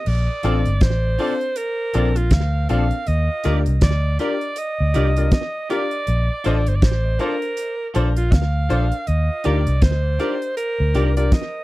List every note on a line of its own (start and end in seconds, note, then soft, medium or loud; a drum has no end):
0.06 0.27 A#1 loud
0.06 0.84 D5 loud
0.06 crash loud
0.43 0.64 A1 medium
0.43 0.59 C4 loud
0.43 0.59 D4 medium
0.43 0.57 F4 medium
0.43 0.59 F4 medium
0.43 0.58 A4 medium
0.43 0.59 A4 loud
0.43 0.58 D5 loud
0.43 closed hi-hat medium
0.65 0.81 G1 medium
0.65 closed hi-hat medium
0.81 1.16 A1 loud
0.81 1.58 C5 loud
0.81 kick loud
0.81 snare loud
0.81 closed hi-hat loud
1.19 1.34 C4 medium
1.19 1.34 D4 medium
1.19 1.32 F4 medium
1.19 1.35 F4 medium
1.19 1.33 A4 loud
1.19 1.35 A4 medium
1.19 1.33 D5 loud
1.19 open hi-hat medium
1.41 closed hi-hat soft
1.56 2.18 A#4 loud
1.56 closed hi-hat loud
1.94 2.29 A#1 medium
1.94 2.09 C4 medium
1.94 2.09 D4 medium
1.94 2.08 F4 medium
1.94 2.09 F4 medium
1.94 2.08 A4 medium
1.94 2.10 A4 medium
1.94 2.08 D5 loud
1.94 closed hi-hat medium
2.16 2.34 F4 loud
2.16 closed hi-hat medium
2.31 2.66 D2 loud
2.31 2.70 F5 loud
2.31 kick loud
2.31 snare loud
2.31 closed hi-hat loud
2.69 2.90 A#1 medium
2.69 2.84 C4 loud
2.69 2.84 D4 medium
2.69 2.83 F4 medium
2.69 2.85 F4 medium
2.69 2.83 A4 medium
2.69 2.85 A4 loud
2.69 2.83 D5 medium
2.69 3.09 F5 loud
2.69 closed hi-hat medium
2.91 closed hi-hat medium
3.07 3.28 D#2 loud
3.07 3.57 D#5 loud
3.07 closed hi-hat medium
3.44 3.65 D2 medium
3.44 3.60 D4 loud
3.44 3.60 F4 medium
3.44 3.58 G4 medium
3.44 3.60 G4 medium
3.44 3.58 A#4 medium
3.44 3.60 A#4 loud
3.44 3.58 D5 loud
3.44 closed hi-hat medium
3.66 3.81 C2 loud
3.66 closed hi-hat medium
3.81 4.17 D2 medium
3.81 4.17 D5 loud
3.81 kick loud
3.81 snare loud
3.81 closed hi-hat loud
4.19 4.35 D4 medium
4.19 4.35 F4 medium
4.19 4.33 G4 medium
4.19 4.35 G4 medium
4.19 4.33 A#4 medium
4.19 4.35 A#4 loud
4.19 4.33 D5 medium
4.19 4.60 D5 loud
4.19 closed hi-hat medium
4.41 closed hi-hat medium
4.56 5.32 D#5 loud
4.56 closed hi-hat loud
4.80 4.94 D2 medium
4.94 5.30 C2 loud
4.94 5.10 D4 medium
4.94 5.10 F4 medium
4.94 5.08 G4 medium
4.94 5.10 G4 medium
4.94 5.08 A#4 loud
4.94 5.10 A#4 loud
4.94 5.08 D5 loud
4.94 closed hi-hat medium
5.16 5.28 D4 medium
5.16 5.28 F4 medium
5.16 5.28 G4 medium
5.16 5.28 A#4 medium
5.16 closed hi-hat medium
5.31 5.67 D#5 loud
5.31 kick loud
5.31 snare loud
5.31 closed hi-hat loud
5.69 5.85 D4 medium
5.69 5.85 F4 loud
5.69 5.83 G4 medium
5.69 5.85 G4 medium
5.69 5.83 A#4 medium
5.69 5.85 A#4 loud
5.69 6.49 D5 loud
5.69 5.84 D5 medium
5.69 closed hi-hat medium
5.91 closed hi-hat medium
6.07 6.28 A#1 loud
6.07 closed hi-hat medium
6.44 6.65 A1 medium
6.44 6.60 D4 loud
6.44 6.58 F4 medium
6.44 6.60 F4 loud
6.44 6.58 A4 loud
6.44 6.60 A4 medium
6.44 6.60 C5 loud
6.44 6.58 D5 loud
6.44 6.58 D#5 medium
6.44 closed hi-hat medium
6.57 6.70 D5 loud
6.66 6.81 G1 medium
6.66 6.77 C5 medium
6.66 closed hi-hat medium
6.76 6.84 D5 medium
6.82 7.17 A1 loud
6.82 7.21 C5 loud
6.82 kick loud
6.82 snare loud
6.82 closed hi-hat loud
7.19 7.35 D4 loud
7.19 7.33 F4 medium
7.19 7.35 F4 medium
7.19 7.33 A4 medium
7.19 7.35 A4 medium
7.19 7.88 A#4 loud
7.19 7.35 C5 loud
7.19 7.33 D5 medium
7.19 closed hi-hat medium
7.42 closed hi-hat soft
7.57 closed hi-hat loud
7.94 8.30 A#1 medium
7.94 8.10 D4 medium
7.94 8.08 F4 medium
7.94 8.10 F4 medium
7.94 8.08 A4 medium
7.94 8.10 A4 medium
7.94 8.10 C5 loud
7.94 8.08 D5 loud
7.94 closed hi-hat medium
8.16 8.34 F4 loud
8.16 closed hi-hat medium
8.32 8.67 D2 loud
8.32 9.09 F5 loud
8.32 kick loud
8.32 snare loud
8.32 closed hi-hat loud
8.69 8.90 A#1 medium
8.69 8.85 D4 loud
8.69 8.83 F4 medium
8.69 8.85 F4 medium
8.69 8.83 A4 medium
8.69 8.85 A4 medium
8.69 8.85 C5 loud
8.69 8.84 D5 medium
8.69 closed hi-hat medium
8.92 closed hi-hat medium
9.07 9.28 D#2 medium
9.07 9.47 D#5 loud
9.07 closed hi-hat medium
9.44 9.66 D2 medium
9.44 9.60 D4 loud
9.44 9.58 D#4 medium
9.44 9.60 F4 medium
9.44 9.58 G4 medium
9.44 9.60 G4 medium
9.44 9.60 A#4 loud
9.44 9.59 D5 medium
9.44 9.84 D5 loud
9.44 closed hi-hat medium
9.67 9.81 C2 loud
9.67 closed hi-hat medium
9.82 10.17 D2 medium
9.82 10.56 C5 loud
9.82 kick loud
9.82 snare loud
9.82 closed hi-hat loud
10.19 10.35 D4 medium
10.19 10.33 D#4 medium
10.19 10.35 F4 medium
10.19 10.33 G4 medium
10.19 10.35 G4 medium
10.19 10.35 A#4 loud
10.19 10.34 D5 medium
10.19 closed hi-hat medium
10.42 closed hi-hat soft
10.57 11.13 A#4 loud
10.57 closed hi-hat loud
10.80 10.94 D2 medium
10.94 11.30 C2 medium
10.94 11.10 D4 loud
10.94 11.08 D#4 medium
10.94 11.10 F4 medium
10.94 11.09 G4 medium
10.94 11.10 G4 medium
10.94 11.10 A#4 medium
10.94 11.09 D5 loud
10.94 closed hi-hat medium
11.17 11.28 D4 medium
11.17 11.28 F4 medium
11.17 11.28 G4 medium
11.17 11.28 A#4 medium
11.17 11.34 D5 loud
11.17 closed hi-hat medium
11.32 11.64 D#5 loud
11.32 kick loud
11.32 snare loud
11.32 closed hi-hat loud